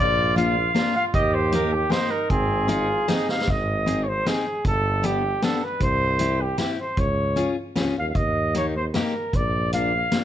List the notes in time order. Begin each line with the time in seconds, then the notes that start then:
0.00 A#1 F4 D5
0.36 A#3 D4 F4 F5, closed hi-hat
0.74 A#3 D4 F4, snare, closed hi-hat
0.96 F5
1.14 D#2 G4 D#5, kick, closed hi-hat
1.34 C5
1.52 A#3 D#4 G4 A#4, closed hi-hat
1.73 G4
1.90 A#3 D#4 G4 C5, snare, closed hi-hat
2.11 A#4
2.30 G#1 C4 G#4, kick, closed hi-hat
2.68 C4 D#4 F4 G#4, closed hi-hat
3.08 C4 D#4 G#4, snare, closed hi-hat
3.29 F5, snare
3.41 snare
3.47 G#1 D#5, kick, closed hi-hat
3.86 C4 D#4 G#4, closed hi-hat
4.03 C#5
4.08 C5
4.26 C4 D#4 G#4, snare, closed hi-hat
4.65 G1 A4, kick, closed hi-hat
5.03 B3 D4 G4, closed hi-hat
5.42 B3 D4 G4 A4, snare, closed hi-hat
5.64 B4
5.80 C2 C5, kick, closed hi-hat
6.19 C4 E4 G4, closed hi-hat
6.41 G4
6.58 C4 E4 G4, snare, closed hi-hat
6.80 C5
6.97 C#2 C#5, kick, closed hi-hat
7.36 C#4 F4 G#4, closed hi-hat
7.75 C#2 C#4 F4 G#4, snare, closed hi-hat
7.97 D#2 F5
8.08 F5
8.15 D#2 D#5, kick, closed hi-hat
8.55 A#3 D#4 G4 C#5, closed hi-hat
8.76 C5
8.94 A#3 D#4 G4 A#4, snare, closed hi-hat
9.33 A#1 D5, kick, closed hi-hat
9.73 A#3 D4 F4 F5, closed hi-hat
10.12 A#3 D4 F4, snare, closed hi-hat